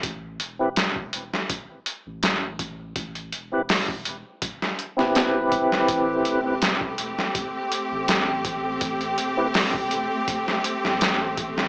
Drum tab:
HH |x-x-x-x-x-x-x-x-|xxx-o-x-x-x-x-x-|x-x-x-x-x-x-x-x-|xxx-o-x-x-x-x-x-|
SD |----o--o----o---|----o----o-oo--o|----o--o----o---|----o----o-oo--o|
BD |o----o--o-----o-|o----o--o-----o-|o----o--o-----o-|o----o--o-----o-|